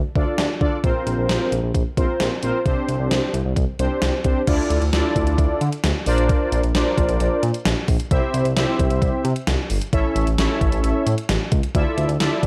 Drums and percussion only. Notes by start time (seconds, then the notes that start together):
0.16 kick
0.38 snare
0.61 kick
0.84 kick, closed hi-hat
1.07 closed hi-hat
1.29 snare, closed hi-hat
1.52 closed hi-hat
1.75 kick, closed hi-hat
1.97 kick, closed hi-hat
2.20 snare, closed hi-hat
2.43 closed hi-hat
2.66 kick, closed hi-hat
2.89 closed hi-hat
3.11 snare, closed hi-hat
3.34 closed hi-hat
3.56 kick, closed hi-hat
3.79 closed hi-hat
4.02 snare, closed hi-hat
4.24 kick, closed hi-hat
4.47 kick, closed hi-hat, crash
4.70 closed hi-hat
4.82 closed hi-hat
4.93 snare, closed hi-hat
5.16 kick, closed hi-hat
5.27 closed hi-hat
5.38 kick, closed hi-hat
5.61 closed hi-hat
5.72 closed hi-hat
5.84 snare, closed hi-hat
6.06 open hi-hat
6.18 closed hi-hat
6.29 kick, closed hi-hat
6.52 closed hi-hat
6.63 closed hi-hat
6.75 snare, closed hi-hat
6.98 kick, closed hi-hat
7.09 closed hi-hat
7.20 closed hi-hat
7.43 closed hi-hat
7.54 closed hi-hat
7.65 snare, closed hi-hat
7.88 kick, open hi-hat
8.00 closed hi-hat
8.11 kick, closed hi-hat
8.34 closed hi-hat
8.45 closed hi-hat
8.57 snare, closed hi-hat
8.79 kick, closed hi-hat
8.90 closed hi-hat
9.02 kick, closed hi-hat
9.25 closed hi-hat
9.36 closed hi-hat
9.47 snare, closed hi-hat
9.70 open hi-hat
9.81 closed hi-hat
9.93 kick, closed hi-hat
10.16 closed hi-hat
10.27 closed hi-hat
10.38 snare, closed hi-hat
10.61 kick, closed hi-hat
10.72 closed hi-hat
10.84 closed hi-hat
11.07 closed hi-hat
11.18 closed hi-hat
11.29 snare, closed hi-hat
11.52 kick, closed hi-hat
11.63 closed hi-hat
11.75 kick, closed hi-hat
11.98 closed hi-hat
12.09 closed hi-hat
12.20 snare, closed hi-hat
12.43 kick, closed hi-hat